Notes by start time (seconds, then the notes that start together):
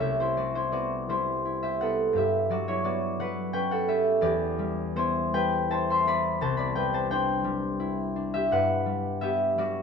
Already playing: E4
0.00 C2 G4 E5
0.20 E4 C5
0.37 G3 F#4 D5
0.55 E4 C5
0.72 B3 F#4 D5
1.09 G3 E4 C5
1.45 E4
1.63 G4 E5
1.81 B3 A4 F#5
2.13 G2 G4
2.18 E5
2.50 F#3 F#4 D5
2.68 E4 C#5
2.84 B3 F#4 D5
3.19 F#3 B4 F#5
3.53 C#4 B4 G5
3.71 A4 F#5
3.88 B3 G4 E5
4.21 E2 G4 D5
4.59 G3
4.96 B3 E4 C5
5.33 G3 B4 G5
5.70 E4 C5 A5
5.90 E5 C6
6.07 B3 D5 B5
6.41 C2 C5 A5
6.57 D5 B5
6.75 G3 B4 G5
6.94 C5 A5
7.11 D4 C5 G5
7.44 G3
7.80 E4
8.16 D4
8.34 G4 E5
8.51 G2 B4 F#5
8.86 G3
9.21 B3 G4 E5
9.58 G3 F#4 D5